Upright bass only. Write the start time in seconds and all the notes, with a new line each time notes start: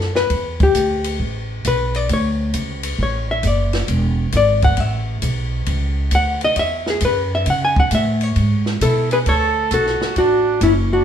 Already playing: F#2
0.30 E2
0.75 D2
1.19 A1
1.65 B1
2.09 D2
2.54 C#2
2.98 A1
3.43 F#1
3.88 E1
4.33 G#1
4.78 A1
5.22 B1
5.67 C#2
6.12 D2
6.56 E2
7.01 F#2
7.46 C#3
7.91 A2
8.36 G#2
8.81 B2
9.26 D2
9.71 B1
10.01 muted upright bass stroke
10.16 A1
10.61 F#1